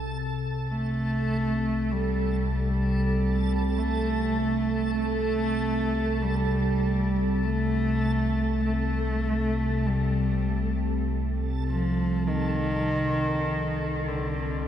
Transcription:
<<
  \new Staff \with { instrumentName = "Synth texture" } { \time 4/4 \tempo 4 = 49 a'1~ | a'1~ | a'1 | }
  \new Staff \with { instrumentName = "Cello" } { \clef bass \time 4/4 r8 a4 g8 g4 a4 | a4 g4 a4 a4 | g4 r8 f8 ees4. d8 | }
  \new Staff \with { instrumentName = "Synth drone" } { \clef bass \time 4/4 <c, c>1~ | <c, c>1~ | <c, c>1 | }
>>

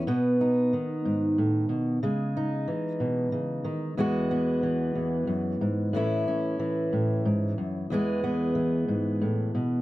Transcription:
\new Staff \with { instrumentName = "Steel-string acoustic guitar" } { \clef bass \time 6/8 \key e \major \tempo 4. = 61 << { b8 dis'2~ dis'8 | gis8 dis'2~ dis'8 | <e gis b fis'>8 b2~ b8 | <e cis' e'>8 cis'2~ cis'8 |
<e gis b gis'>8 b2~ b8 | } \\ { b,4 dis8 gis,8 a,8 b,8 | cis4 e8 b,8 cis8 dis8 | e,4 e8 e,8 fis,8 gis,8 | a,4 e8 a,8 gis,8 fis,8 |
e,4 e8 gis,8 a,8 b,8 | } >> }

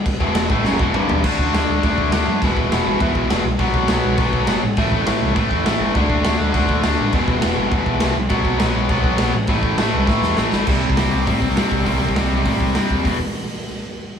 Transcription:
<<
  \new Staff \with { instrumentName = "Distorted electric guitar" } { \clef bass \time 4/4 \key e \minor \tempo 4 = 204 r8 <e, b, e>4 <a, e a>8 <fis, cis fis>8 <e, b, e>8 <g, d g>4 | <d a d'>4 <d a d'>4 <d a d'>4 <d a d'>4 | <e, b, e>4 <e, b, e>4 <e, b, e>4 <e, b, e>8 r8 | <b, fis b>4 <b, fis b>4 <b, fis b>4 <b, fis b>8 r8 |
<a, e a>4 <a, e a>4 <a, e a>4 <a, e a>4 | <d a d'>4 <d a d'>4 <d a d'>4 <d a d'>4 | <e, b, e>4 <e, b, e>4 <e, b, e>4 <e, b, e>8 r8 | <b, fis b>4 <b, fis b>4 <b, fis b>4 <b, fis b>8 r8 |
<a, e a>4 <a, e a>4 <a, e a>4 <a, e a>4 | <c g c'>4 <c g c'>4 <c g c'>4 <c g c'>4 | <c g c'>4 <c g c'>4 <c g c'>4 <c g c'>4 | <e, b, e>8 r2. r8 | }
  \new Staff \with { instrumentName = "Picked electric bass" } { \clef bass \time 4/4 \key e \minor r8 e,,4 a,,8 fis,,8 e,,8 g,,4 | d,8 d,8 d,8 d,8 d,8 d,8 d,8 fis,8 | e,,8 e,,8 e,,8 g,,8 e,8 b,,8 e,,8 b,,8 | b,,8 b,,8 b,,8 b,,8 b,,8 b,,8 g,,8 a,,8 |
a,,8 a,,8 a,,8 c,8 a,8 e,8 a,,8 g,,8 | d,8 d,8 d,8 d,8 d,8 d,8 d,8 a,,8 | e,,8 e,,8 e,,8 g,,8 e,8 b,,8 c,8 b,,8 | b,,8 b,,8 b,,8 b,,8 b,,8 b,,8 b,,8 a,,8 |
a,,8 a,,8 a,,8 c,8 a,8 e,8 a,,8 g,,8 | c,8 c,8 c,8 c,8 a,8 c,8 g,8 c,8 | c,8 c,8 c,8 c,8 a,8 c,8 g,8 dis,8 | e,,8 r2. r8 | }
  \new DrumStaff \with { instrumentName = "Drums" } \drummode { \time 4/4 <cymc bd>8 bd8 <cymc sn>8 bd8 sn8 bd8 toml8 tomfh8 | <cymc bd>8 bd8 <cymc sn>4 <cymc bd>8 bd8 <cymc sn>4 | <cymc bd>8 bd8 <cymc sn>4 <cymc bd>8 bd8 <cymc sn>4 | <cymc bd>8 bd8 <cymc sn>4 <cymc bd>8 bd8 <cymc sn>4 |
<cymc bd>8 bd8 <cymc sn>4 <cymc bd>8 bd8 <cymc sn>4 | <cymc bd>8 bd8 <cymc sn>4 <cymc bd>8 bd8 <cymc sn>4 | <cymc bd>8 bd8 <cymc sn>4 <cymc bd>8 bd8 <cymc sn>4 | <cymc bd>8 bd8 <cymc sn>4 <cymc bd>8 bd8 <cymc sn>4 |
<cymc bd>8 bd8 <cymc sn>4 <bd sn>8 sn8 sn8 sn8 | <cymc bd>8. bd16 <hho sn>4 <hho bd>8 bd8 <hho sn>8 bd8 | <hho bd>8. bd16 <hho sn>4 <hho bd>8 bd8 <hho sn>8 bd8 | <hho bd>4 r4 r4 r4 | }
>>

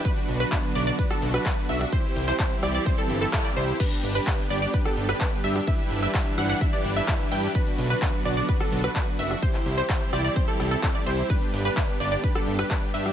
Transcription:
<<
  \new Staff \with { instrumentName = "Synth pluck" } { \time 4/4 \key g \major \tempo 4 = 128 b'8. b'16 b'8 d''16 d''16 b'16 a'8 b'16 b'8 e''8 | c''8. c''16 c''8 d''16 d''16 c''16 a'8 a'16 a'16 d''16 c''8 | b'8. b'16 b'8 d''16 d''16 b'16 a'8 b'16 b'8 e''8 | e''8. e''16 e''8 fis''16 fis''16 e''16 d''8 e''16 e''8 g''8 |
b'8. b'16 b'8 d''16 d''16 b'16 a'8 b'16 b'8 e''8 | c''8. c''16 c''8 d''16 d''16 c''16 a'8 a'16 a'16 d''16 c''8 | b'8. b'16 b'8 d''16 d''16 b'16 a'8 b'16 b'8 e''8 | }
  \new Staff \with { instrumentName = "Supersaw synth" } { \time 4/4 \key g \major <d' fis' b'>8. <d' fis' b'>16 <d' fis' b'>8 <d' fis' d''>16 <d' fis' d''>16 <d' fis' b'>16 <d' fis' a'>8 <d' fis' b'>16 d'8 <d' fis' e''>8 | <e' g' c''>8. <e' g' c''>16 <e' g' c''>8 <e' g' d''>16 <e' g' d''>16 <e' g' c''>16 <e' g' a'>8 <e' g' a'>16 r16 <e' g' d''>16 <e' g' c''>8 | <d' g' b'>8. <d' g' b'>16 <d' g' b'>8 <d' g' d''>16 <d' g' d''>16 <d' g' b'>16 <d' g' a'>8 <d' g' b'>16 <d' g' b'>8 <d' g' e''>8 | <d' e' g' b' e''>8. <d' e' g' b' e''>16 r8 <d' e' g' b' fis''>16 <d' e' g' b' fis''>16 <e' g' b' e''>16 <d' e' g' b' d''>8 <d' e' g' b' e''>16 <d' e' g' b' e''>8 <d' e' g' b' g''>8 |
<d' fis' b'>8. <d' fis' b'>16 <d' fis' b'>8 <d' fis' d''>16 <d' fis' d''>16 <d' fis' b'>16 <d' fis' a'>8 <d' fis' b'>16 <d' b'>8 <d' fis' e''>8 | <e' g' c''>8. <e' g' c''>16 <e' g' c''>8 <e' g' d''>16 <e' g' d''>16 <e' g' c''>16 <e' g' a'>8 <e' g' a'>16 <e' g' a'>16 <e' g' d''>16 <e' g' c''>8 | <d' g' b'>8. <d' g' b'>16 b'8 <d' g' d''>16 <d' g' d''>16 <d' g' b'>16 <d' g' a'>8 <d' g' b'>16 <g' b'>8 <d' g' e''>8 | }
  \new Staff \with { instrumentName = "String section" } { \clef bass \time 4/4 \key g \major << { <d b>1 | <e c'>1 | <d b>1 | <e d'>1 |
<d b>1 | <e c'>1 | <d b>1 | } \\ { fis1 | g1 | g1~ | g1 |
fis1 | g1~ | g1 | } >> }
  \new Staff \with { instrumentName = "Analog synth bass" } { \clef bass \time 4/4 \key g \major r8 b,,8 r8 b,,8 r8 b,,8 r8 b,,8 | r8 c,8 r8 c,8 r8 g,,8 r8 c,8 | r8 g,,8 r8 g,,8 r8 g,,8 r8 g,8 | r8 g,,8 r8 g,,8 r8 g,,8 r8 g,8 |
r8 b,,8 r8 b,,8 r8 b,,8 r8 fis,,8 | r8 c,8 r8 c,8 r8 c,8 r8 c,8 | r8 g,,8 r8 g,,8 r8 g,,8 r8 g,8 | }
  \new DrumStaff \with { instrumentName = "Drums" } \drummode { \time 4/4 <hh bd cymr>16 hh16 hho16 hh16 <hc hh bd cymr>16 hh16 hho16 hh16 <hh bd cymr>16 <hh ss>16 hho16 <hh ss>16 <hc hh bd cymr>16 hh16 hho16 <hh ss>16 | <hh bd cymr>16 hh16 hho16 <hc hh>16 <hc hh bd cymr>16 hh16 <hho ss>16 hh16 <hho bd cymr>16 hh16 hho16 hh16 <hc hh bd cymr>16 hh16 hho16 hh16 | <cymc hh bd cymr>16 hh16 hho16 hh16 <hc hh bd cymr>16 hh16 hho16 hh16 <hh bd cymr>16 <hh ss>16 hho16 <hh ss>16 <hc hh bd cymr>16 hh16 hho16 <hh ss>16 | <hh bd cymr>16 hh16 hho16 hh16 <hc hh bd cymr>16 hh16 <hho ss>16 hh16 <hh bd cymr>16 hh16 hho16 hh16 <hc hh bd cymr>16 hh16 hho16 hh16 |
<hh bd cymr>16 hh16 hho16 hh16 <hc hh bd cymr>16 hh16 hho16 hh16 <hh bd cymr>16 <hh ss>16 hho16 <hh ss>16 <hc hh bd cymr>16 hh16 hho16 <hh ss>16 | <hh bd cymr>16 <hc hh>16 hho16 hh16 <hc hh bd cymr>16 hh16 <hho ss>16 hh16 <hho bd cymr>16 hh16 <hho ss>16 hh16 <hc hh bd cymr>16 hh16 hho16 hh16 | <hh bd cymr>16 hh16 hho16 hh16 <hc hh bd cymr>16 hh16 hho16 hh16 <hh bd cymr>16 <hh ss>16 hho16 <hh ss>16 <hc hh bd cymr>16 hh16 hho16 <hh ss>16 | }
>>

